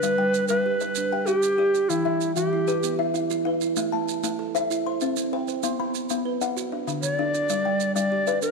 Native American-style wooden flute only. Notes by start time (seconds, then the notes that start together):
Already playing: B4
0.48 B4
1.26 G4
1.89 E4
2.35 G4
7.02 D5
7.94 D5
8.42 B4